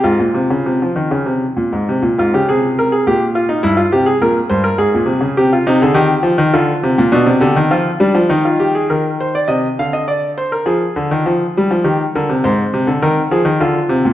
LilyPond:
<<
  \new Staff \with { instrumentName = "Grand piano" } { \time 3/4 \key f \minor \tempo 4 = 102 f'2~ f'8 r8 | r8 f'16 g'16 aes'8 bes'16 aes'16 g'8 f'16 ees'16 | e'16 f'16 g'16 aes'16 bes'8 c''16 bes'16 aes'4 | g'16 f'16 ees'16 aes'16 g'4 f'4 |
d'8 g'8 f'8 d'8 ees'16 f'16 g'16 aes'16 | bes'8 c''16 d''16 ees''8 f''16 ees''16 d''8 c''16 bes'16 | aes'2 g'8 bes'8 | c''4 bes'8 aes'8 f'4 | }
  \new Staff \with { instrumentName = "Grand piano" } { \clef bass \time 3/4 \key f \minor aes,16 bes,16 c16 des16 c16 f16 ees16 des16 c8 bes,16 aes,16 | c16 bes,16 aes,16 des16 c4 bes,4 | g,8 c8 bes,8 g,8 aes,16 bes,16 c16 des16 | c8 c16 d16 ees8 f16 ees16 d8 c16 bes,16 |
b,16 c16 d16 ees16 f8 g16 f16 ees4 | ees4 c8 d4. | f8 d16 ees16 f8 g16 f16 ees8 d16 c16 | aes,8 c16 d16 ees8 f16 ees16 d8 c16 bes,16 | }
>>